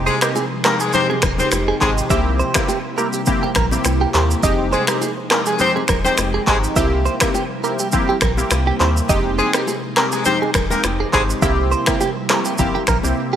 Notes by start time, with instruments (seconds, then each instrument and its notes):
Already playing: ambient pad C3 F3 G#3 D#4, synth keys G#3 C4 D#4 G4
0.06 horn section G#3 G#4, clean electric guitar C5, shaker
0.21 synth keys G#3 C4 D#4 G4, clean electric guitar A#4, finger snap, cross-stick, shaker
0.35 clean electric guitar G#4, high bongo, shaker
0.64 synth keys G#3 C4 D#4 G4, horn section A#3 A#4, clean electric guitar A#4, finger snap, cross-stick, clap, shaker
0.80 horn section G#3 G#4, clean electric guitar G#4, shaker
0.93 synth keys G#3 C4 D#4 G4, horn section C4 C5, low conga, shaker
1.10 clean electric guitar G#4, low bongo
1.22 sub bass D#1, clean electric guitar A#4, finger snap, kick, cross-stick, low conga, shaker
1.38 synth keys G#3 C4 D#4 G4, horn section C4 C5, low bongo, shaker
1.52 sub bass F1, finger snap, cross-stick, high bongo, shaker
1.68 clean electric guitar G#4
1.81 sub bass G#1, synth keys G#3 C4 D#4 G4, horn section G#3 G#4, clean electric guitar C5, kick, clap, shaker
1.98 shaker
2.10 sub bass C2, ambient pad G3 A#3 E4, synth keys A#3 C4 E4 G4, clean electric guitar E5, kick, low conga, shaker
2.39 clean electric guitar C5, low bongo, shaker
2.54 synth keys A#3 C4 E4 G4, clean electric guitar A#4, finger snap, kick, cross-stick, high bongo, low bongo, shaker
2.68 clean electric guitar G4, high bongo, shaker
2.98 synth keys A#3 C4 E4 G4, clean electric guitar A#4, high bongo, shaker
3.13 clean electric guitar G4, shaker
3.26 synth keys A#3 C4 E4 G4, kick, low conga, shaker
3.43 clean electric guitar G4, low bongo
3.55 sub bass A#1, clean electric guitar A#4, finger snap, kick, cross-stick, low conga, shaker
3.71 synth keys A#3 C4 E4 G4, low bongo, shaker
3.85 sub bass C2, finger snap, cross-stick, high bongo, shaker
4.01 clean electric guitar G4
4.14 sub bass D#2, synth keys A#3 C4 E4 G4, clean electric guitar C5, clap, shaker
4.31 shaker
4.43 sub bass F1, ambient pad F3 G#3 D#4, synth keys G#3 C4 D#4 G4, clean electric guitar D#5, kick, low conga, shaker
4.72 horn section G#3 G#4, clean electric guitar C5, shaker
4.87 synth keys G#3 C4 D#4 G4, clean electric guitar A#4, finger snap, cross-stick, shaker
5.01 clean electric guitar G#4, high bongo, shaker
5.30 synth keys G#3 C4 D#4 G4, horn section A#3 A#4, clean electric guitar A#4, finger snap, cross-stick, clap, shaker
5.46 horn section G#3 G#4, clean electric guitar G#4, shaker
5.59 synth keys G#3 C4 D#4 G4, horn section C4 C5, low conga, shaker
5.76 clean electric guitar G#4, low bongo
5.88 sub bass D#1, clean electric guitar A#4, finger snap, kick, cross-stick, low conga, shaker
6.04 synth keys G#3 C4 D#4 G4, horn section C4 C5, low bongo, shaker
6.18 sub bass F1, finger snap, cross-stick, high bongo, shaker
6.34 clean electric guitar G#4
6.47 sub bass G#1, synth keys G#3 C4 D#4 G4, horn section G#3 G#4, clean electric guitar C5, kick, clap, shaker
6.64 shaker
6.76 sub bass C2, ambient pad G3 A#3 E4, synth keys A#3 C4 E4 G4, clean electric guitar E5, kick, low conga, shaker
7.06 clean electric guitar C5, shaker
7.20 synth keys A#3 C4 E4 G4, clean electric guitar A#4, finger snap, kick, cross-stick, shaker
7.34 clean electric guitar G4, high bongo, shaker
7.63 synth keys A#3 C4 E4 G4, clean electric guitar A#4, shaker
7.79 clean electric guitar G4, shaker
7.92 synth keys A#3 C4 E4 G4, kick, low conga, shaker
8.09 clean electric guitar G4, low bongo
8.21 sub bass A#1, clean electric guitar A#4, finger snap, kick, cross-stick, low conga, shaker
8.37 synth keys A#3 C4 E4 G4, low bongo, shaker
8.51 sub bass C2, finger snap, cross-stick, high bongo, shaker
8.67 clean electric guitar G4
8.80 sub bass D#2, synth keys A#3 C4 E4 G4, clean electric guitar C5, clap, shaker
8.97 shaker
9.09 sub bass F1, ambient pad C3 F3 G#3 D#4, synth keys G#3 C4 D#4 G4, clean electric guitar D#5, kick, low conga, shaker
9.39 horn section G#3 G#4, clean electric guitar C5, shaker
9.53 synth keys G#3 C4 D#4 G4, clean electric guitar A#4, finger snap, cross-stick, shaker
9.67 clean electric guitar G#4, high bongo, shaker
9.96 synth keys G#3 C4 D#4 G4, horn section A#3 A#4, clean electric guitar A#4, finger snap, cross-stick, clap, shaker
10.12 horn section G#3 G#4, clean electric guitar G#4, shaker
10.25 synth keys G#3 C4 D#4 G4, horn section C4 C5, low conga, shaker
10.42 clean electric guitar G#4, low bongo
10.54 sub bass D#1, clean electric guitar A#4, finger snap, kick, cross-stick, low conga, shaker
10.70 synth keys G#3 C4 D#4 G4, horn section A#3 A#4, low bongo, shaker
10.84 sub bass F1, finger snap, cross-stick, high bongo, shaker
11.00 clean electric guitar G#4
11.13 sub bass G#1, synth keys G#3 C4 D#4 G4, horn section G#3 G#4, clean electric guitar C5, kick, clap, shaker
11.30 shaker
11.42 sub bass C2, ambient pad G3 A#3 E4, synth keys A#3 C4 E4 G4, clean electric guitar E5, kick, low conga, shaker
11.72 clean electric guitar C5, low bongo, shaker
11.86 synth keys A#3 C4 E4 G4, clean electric guitar A#4, finger snap, kick, cross-stick, shaker
12.00 clean electric guitar G4, high bongo, shaker
12.29 synth keys A#3 C4 E4 G4, clean electric guitar A#4, finger snap, cross-stick, clap, shaker
12.45 clean electric guitar G4, shaker
12.58 sub bass G1, synth keys A#3 C4 E4 G4, kick, low conga, shaker
12.75 clean electric guitar G4, low bongo
12.87 sub bass A#1, clean electric guitar A#4, finger snap, kick, cross-stick, low conga, shaker
13.03 sub bass C2, synth keys A#3 C4 E4 G4, low bongo, shaker